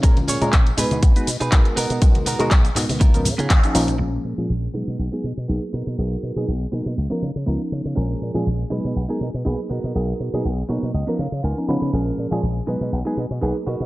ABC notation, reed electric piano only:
X:1
M:4/4
L:1/16
Q:"Swing 16ths" 1/4=121
K:G#dor
V:1 name="Reed electric piano"
[G,A,CEA]3 [G,A,CEA] z2 [G,B,DFB]2 z [G,B,DFB] z2 [G,B,DFA]4 | [G,B,DFA]3 [G,B,DFA] z2 [G,B,DFA]2 z [E,B,CDA] z3 [E,A,CDG] [E,A,CDA]2 | [E,G,A,CG]3 [E,G,A,CG] z2 [F,G,B,DG]2 z [F,G,B,DG] z2 [F,A,B,DG]4 | [F,B,DGA]3 [F,A,B,DG] z2 [F,A,B,DG]2 z [E,B,CDA] z2 [E,B,CDA]4 |
[E,G,A,CG]3 [E,G,A,CG] z2 [F,G,B,DG]2 z [F,G,B,DG] z2 [F,A,B,DG]4 | [F,B,DGA]3 [F,A,B,DG] z2 [F,A,B,DG]2 z [E,B,CDA] z3 [E,B,CDA] [E,B,CDB]2 | [E,G,A,CG]3 [E,G,A,CG] z2 [F,G,B,DG]2 z [F,G,B,DG] z2 [F,A,B,DG]4 |]